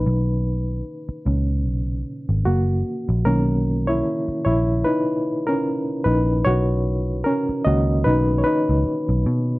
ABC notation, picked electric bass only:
X:1
M:4/4
L:1/16
Q:"Swing 16ths" 1/4=75
K:B
V:1 name="Picked electric bass" clef=bass
B,,,4 z2 C,,2 B,,,2 z G,,, F,,,2 z A,,, | B,,,4 z2 A,,,2 z6 A,,,2 | B,,,4 z2 C,,2 B,,,2 z C,, z B,,, B,,2 |]